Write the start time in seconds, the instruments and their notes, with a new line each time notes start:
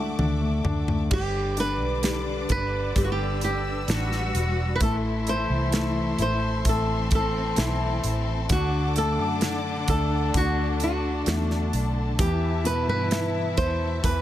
Already playing: fingered electric bass D2, grand piano D3 A3 D4, nylon-string guitar F#4, string section A4 E5 F#5 D6
0.19 fingered electric bass D2, grand piano D4, mid tom
0.41 grand piano A3
0.64 fingered electric bass D2, grand piano D4, floor tom
0.88 grand piano A3, floor tom
1.10 fingered electric bass G1, cello section D3 D4, grand piano G3, nylon-string guitar G4, string section B4 D5 D6, kick, crash
1.57 grand piano D4, nylon-string guitar B4, closed hi-hat
1.81 fingered electric bass B1
2.02 grand piano G3, snare, closed hi-hat
2.49 fingered electric bass G1, grand piano D4, nylon-string guitar B4, kick, closed hi-hat
2.96 fingered electric bass G1, grand piano G3, nylon-string guitar G4, string section E6, kick, closed hi-hat
3.04 nylon-string guitar F#4
3.12 nylon-string guitar G4
3.41 nylon-string guitar G4, closed hi-hat
3.88 fingered electric bass A1, cello section G3 F#4, grand piano D4, snare, closed hi-hat
4.12 snare
4.34 fingered electric bass E1, closed hi-hat
4.76 nylon-string guitar B4
4.80 fingered electric bass A1, cello section E3 E4, grand piano A3, string section A4 E5 C6, nylon-string guitar A4, kick, closed hi-hat
5.27 grand piano E4, nylon-string guitar C5, closed hi-hat
5.50 fingered electric bass C2
5.72 grand piano A3, snare, closed hi-hat
6.19 fingered electric bass A1, grand piano E4, nylon-string guitar C5, closed hi-hat
6.65 fingered electric bass A1, cello section E3 C4, grand piano A3, kick, closed hi-hat
6.69 nylon-string guitar A4
7.11 kick, closed hi-hat
7.15 nylon-string guitar A4
7.56 fingered electric bass B1, grand piano E4, snare, closed hi-hat
8.04 fingered electric bass A1, closed hi-hat
8.49 fingered electric bass D2, grand piano D3, cello section D3 D4, nylon-string guitar F#4, string section D5 F#5 D6, kick, closed hi-hat
8.96 grand piano A3, nylon-string guitar A4, closed hi-hat
9.19 fingered electric bass F#2
9.41 grand piano D3, snare, closed hi-hat
9.88 fingered electric bass D2, grand piano A3, nylon-string guitar A4, kick, closed hi-hat
10.34 fingered electric bass D2, grand piano D3, nylon-string guitar F#4, string section A5, kick, closed hi-hat
10.80 nylon-string guitar F#4, closed hi-hat
11.26 fingered electric bass E2, grand piano A3, snare, closed hi-hat
11.51 snare
11.73 fingered electric bass B1, closed hi-hat
12.19 fingered electric bass E2, grand piano E3, cello section E3 E4, nylon-string guitar G4, string section E5, kick, closed hi-hat
12.64 grand piano B2, nylon-string guitar B4, closed hi-hat
12.88 fingered electric bass G2, nylon-string guitar B4
13.11 grand piano E4, snare, closed hi-hat
13.57 fingered electric bass E2, nylon-string guitar C5, kick, closed hi-hat
14.03 fingered electric bass E2, grand piano E3, nylon-string guitar B4, kick, closed hi-hat